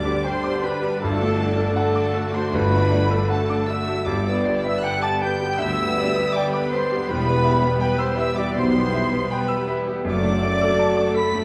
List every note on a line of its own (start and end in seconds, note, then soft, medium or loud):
0.00 0.11 D2 medium
0.00 0.98 D3 medium
0.00 1.03 D3 medium
0.00 0.82 G3 medium
0.00 0.98 G3 medium
0.00 0.98 D4 medium
0.00 4.03 D4 medium
0.00 0.05 G4 medium
0.00 0.97 G4 medium
0.00 0.98 G4 medium
0.00 0.24 D5 medium
0.00 0.25 D5 medium
0.00 1.03 D5 medium
0.00 0.24 G5 medium
0.00 0.24 D6 medium
0.00 0.44 D6 medium
0.05 0.25 B3 medium
0.05 0.36 G4 medium
0.24 0.43 G3 medium
0.24 0.65 C5 medium
0.24 0.63 C5 medium
0.24 0.55 G5 medium
0.24 0.63 C6 loud
0.44 0.63 B3 medium
0.44 0.74 D6 medium
0.62 0.82 D4 medium
0.62 0.94 G4 medium
0.62 1.01 B4 medium
0.62 1.03 B4 medium
0.62 1.01 B5 medium
0.82 1.01 G3 medium
0.82 1.01 B3 medium
1.00 1.63 G1 medium
1.00 1.64 G1 medium
1.00 1.63 G2 medium
1.00 2.49 G2 medium
1.00 1.72 D3 medium
1.00 1.74 A3 medium
1.00 4.03 A3 medium
1.00 1.19 A3 medium
1.00 1.74 D4 medium
1.00 1.74 F#4 medium
1.00 4.08 F#4 medium
1.00 1.74 A4 medium
1.00 1.50 A4 medium
1.00 1.74 A5 loud
1.20 1.51 A3 medium
1.20 1.38 D4 medium
1.39 1.57 A3 medium
1.39 1.69 D5 medium
1.57 1.76 D4 medium
1.57 1.87 A4 medium
1.74 3.25 D3 medium
1.74 1.94 A3 medium
1.74 3.26 A3 medium
1.74 3.27 D4 medium
1.74 3.27 F#4 medium
1.74 2.32 A4 medium
1.74 2.35 A4 medium
1.74 2.06 F#5 medium
1.74 2.31 A5 medium
1.92 2.12 D4 medium
1.92 2.25 D6 medium
2.12 2.32 A3 medium
2.12 2.45 A4 medium
2.31 2.51 D4 medium
2.31 2.63 F#4 medium
2.31 2.52 C5 medium
2.31 2.56 C5 medium
2.31 2.53 C6 medium
2.49 3.17 G1 medium
2.49 3.17 G2 medium
2.49 2.68 A3 medium
2.49 3.28 B4 medium
2.53 4.03 G2 medium
2.53 3.32 B4 medium
2.53 3.30 B5 loud
2.72 3.03 A3 medium
2.72 2.91 D4 medium
2.90 3.09 A3 medium
2.90 3.22 D5 medium
3.08 3.28 D4 medium
3.08 3.41 A4 medium
3.28 3.48 A3 medium
3.28 4.06 A3 medium
3.28 3.88 D4 medium
3.28 3.88 F#4 medium
3.28 3.68 A4 medium
3.28 3.71 A4 medium
3.28 3.60 F#5 medium
3.28 3.68 A5 medium
3.33 4.06 D3 medium
3.48 3.67 D4 medium
3.48 3.80 D6 medium
3.68 3.88 A3 medium
3.68 3.99 A4 medium
3.68 4.06 E5 medium
3.68 4.04 E5 medium
3.68 4.07 E6 medium
3.87 4.07 D4 medium
3.87 4.07 F#4 medium
4.04 4.71 G1 medium
4.04 5.55 G2 medium
4.04 4.71 G2 medium
4.04 6.20 D3 medium
4.04 10.05 G3 medium
4.04 4.25 G3 medium
4.04 6.33 B3 medium
4.04 10.01 B3 medium
4.04 6.29 G4 medium
4.04 10.02 G4 medium
4.04 4.66 D5 medium
4.04 4.65 D5 medium
4.04 4.28 D6 medium
4.09 6.20 G3 medium
4.27 4.57 B3 medium
4.27 4.45 B3 medium
4.27 4.37 E6 medium
4.36 4.46 D6 medium
4.46 4.65 D4 medium
4.46 4.76 D5 medium
4.46 4.55 C6 medium
4.54 4.63 D6 medium
4.62 4.95 B4 medium
4.62 4.84 E5 medium
4.62 4.82 E6 medium
4.66 4.84 B3 medium
4.82 5.03 G3 medium
4.82 5.04 F#5 medium
4.82 5.02 F#5 loud
4.82 5.14 G5 medium
4.82 5.02 F#6 loud
5.02 5.23 B3 medium
5.02 5.23 A5 medium
5.02 5.21 A5 medium
5.02 5.33 D6 medium
5.02 5.21 A6 medium
5.21 5.42 D4 medium
5.21 5.52 B4 medium
5.21 5.59 G5 medium
5.21 5.60 G5 medium
5.21 5.59 G6 loud
5.40 5.61 B3 medium
5.40 5.70 G4 medium
5.57 6.22 D2 medium
5.57 6.23 D2 medium
5.57 5.89 D3 medium
5.57 6.08 E5 medium
5.57 6.34 E5 medium
5.57 6.33 E6 loud
5.63 5.79 G3 medium
5.80 6.09 B3 medium
5.80 5.99 B3 medium
5.98 6.18 D4 medium
5.98 6.27 D5 medium
6.15 6.45 B4 medium
6.20 6.36 B3 medium
6.33 7.08 G3 medium
6.33 6.52 D5 medium
6.33 6.65 G5 medium
6.33 6.52 D6 loud
6.38 7.09 D3 medium
6.38 6.55 G3 medium
6.51 6.71 B4 medium
6.51 6.75 B4 medium
6.51 6.70 B5 medium
6.51 6.83 D6 medium
6.55 6.73 B3 medium
6.70 7.01 B4 medium
6.70 7.08 C5 medium
6.70 7.12 C5 medium
6.70 7.08 C6 medium
6.75 6.92 D4 medium
6.91 7.10 B3 medium
6.91 7.09 G4 medium
7.07 7.69 E1 medium
7.07 7.70 E1 medium
7.07 7.69 E2 medium
7.07 8.52 E2 medium
7.07 7.79 E3 medium
7.07 7.80 G3 medium
7.07 7.79 B3 medium
7.07 7.78 G4 medium
7.07 7.65 B4 medium
7.07 7.82 B4 medium
7.07 7.79 B5 loud
7.11 7.27 G3 medium
7.26 7.55 B3 medium
7.26 7.46 B3 medium
7.44 7.64 E4 medium
7.44 7.73 E5 medium
7.62 7.81 B3 medium
7.62 7.92 B4 medium
7.79 9.27 E3 medium
7.79 7.99 G3 medium
7.79 9.28 G3 medium
7.79 9.26 G4 medium
7.79 7.99 B4 medium
7.79 8.10 G5 medium
7.79 7.99 B5 loud
7.83 8.03 B4 medium
7.98 8.17 B3 medium
7.98 8.17 C5 medium
7.98 8.22 C5 medium
7.98 8.17 C6 medium
7.98 8.28 E6 medium
8.17 8.36 E4 medium
8.17 8.48 B4 medium
8.17 8.36 E5 medium
8.17 8.40 E5 medium
8.17 8.36 E6 medium
8.36 8.55 B3 medium
8.36 8.67 G4 medium
8.36 8.55 D5 medium
8.36 8.60 D5 medium
8.36 8.55 D6 medium
8.55 9.18 B1 medium
8.55 9.19 B1 medium
8.55 8.85 B2 medium
8.55 9.18 B2 medium
8.55 8.72 G3 medium
8.55 9.31 C5 medium
8.55 9.29 C6 loud
8.59 9.32 C5 medium
8.74 9.04 B3 medium
8.74 8.93 B3 medium
8.93 9.13 E4 medium
8.93 9.23 E5 medium
9.11 9.31 B3 medium
9.11 9.41 B4 medium
9.30 10.04 E3 medium
9.30 10.04 G3 medium
9.30 9.50 G3 medium
9.30 9.88 B3 medium
9.30 9.88 G4 medium
9.30 9.68 B4 medium
9.30 9.61 G5 medium
9.30 9.68 B5 medium
9.34 9.69 B4 medium
9.48 9.69 B3 medium
9.48 9.79 E6 medium
9.68 9.87 E4 medium
9.68 9.98 B4 medium
9.87 10.06 B3 medium
9.87 10.05 G4 medium
10.05 10.67 F#1 medium
10.05 11.44 F#2 medium
10.05 10.67 F#2 medium
10.05 11.44 F#3 medium
10.05 11.44 A3 medium
10.05 10.23 A3 medium
10.05 11.44 A3 medium
10.05 11.44 F#4 medium
10.05 11.44 A4 medium
10.05 11.12 D5 medium
10.05 11.13 D5 medium
10.09 11.13 D6 loud
10.24 10.53 A3 medium
10.24 10.42 D4 medium
10.42 10.61 A3 medium
10.42 10.72 D5 medium
10.61 10.80 D4 medium
10.61 10.90 A4 medium
10.79 10.98 A3 medium
10.79 11.08 A5 medium
10.97 11.15 D4 medium
10.97 11.26 D6 medium
11.14 11.34 A3 medium
11.14 11.44 A4 medium
11.14 11.44 B5 medium
11.14 11.44 B6 loud
11.32 11.44 A3 medium
11.32 11.44 D4 medium